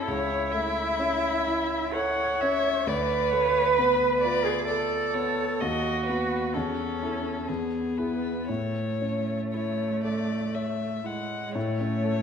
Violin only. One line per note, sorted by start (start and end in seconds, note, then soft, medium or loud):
0.08 0.53 C#5 medium
0.51 1.93 E5 medium
1.94 2.42 F#5 medium
2.41 2.89 E5 medium
2.87 3.33 D5 medium
3.31 3.76 C#5 medium
3.77 4.20 B4 medium
4.20 4.65 D5 medium
4.66 5.16 D5 medium
5.14 5.62 C#5 medium
5.60 6.05 D#5 medium
6.06 6.55 B4 medium
6.54 7.50 A4 medium
7.48 7.99 G#4 soft
7.97 8.48 B4 medium
8.48 9.41 C#5 medium
9.53 10.00 C#5 medium
10.04 10.56 D5 medium
10.54 11.07 E5 soft
11.06 11.55 F#5 medium
11.56 12.22 C#5 medium